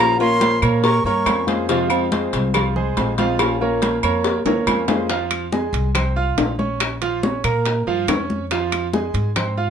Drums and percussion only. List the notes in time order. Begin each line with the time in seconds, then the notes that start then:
0.20 high conga
0.41 cowbell, high conga, low timbale, low agogo
0.62 high conga, low agogo, claves
0.84 cowbell, high conga
1.05 high conga
1.26 cowbell, high conga, low timbale, low agogo, claves
1.48 cowbell, high conga
1.69 cowbell, high conga, low agogo
1.90 high conga, low agogo, claves
2.12 cowbell, high conga, low timbale
2.33 cowbell, high conga, low agogo
2.54 cowbell, high conga, low conga, low agogo, claves
2.76 high conga, low conga
2.97 cowbell, high conga, low timbale, low agogo
3.18 cowbell, high conga, low agogo
3.39 cowbell, high conga, low agogo, claves
3.61 high conga
3.82 cowbell, high conga, low timbale, low agogo
4.03 high conga, low agogo, claves
4.24 cowbell, high bongo, high conga
4.46 low bongo, high conga, high timbale
4.67 cowbell, high conga, high timbale, low agogo, claves
4.88 cowbell, low bongo, high conga, low timbale
5.09 high bongo, high conga, high timbale
5.31 high bongo, high conga, high timbale, claves
5.52 high bongo, high conga, low timbale
5.74 high conga, high timbale
5.95 high bongo, high conga, low conga, high timbale, claves
6.16 high bongo, high conga
6.38 high bongo, low bongo, high conga, high timbale, low timbale
6.59 high bongo, high conga
6.80 high bongo, high conga, high timbale, claves
7.02 high bongo, high conga, high timbale
7.23 high bongo, high conga, low timbale
7.44 high conga, high timbale, claves
7.65 high bongo, high conga, high timbale
7.87 high bongo, high conga
8.08 high bongo, low bongo, high conga, high timbale, low timbale, claves
8.30 high bongo, high conga
8.51 high bongo, high conga, high timbale
8.72 high bongo, high conga, high timbale, claves
8.93 high bongo, high conga, low timbale
9.15 high conga, high timbale
9.36 high bongo, high conga, low conga, high timbale, claves
9.57 high bongo, high conga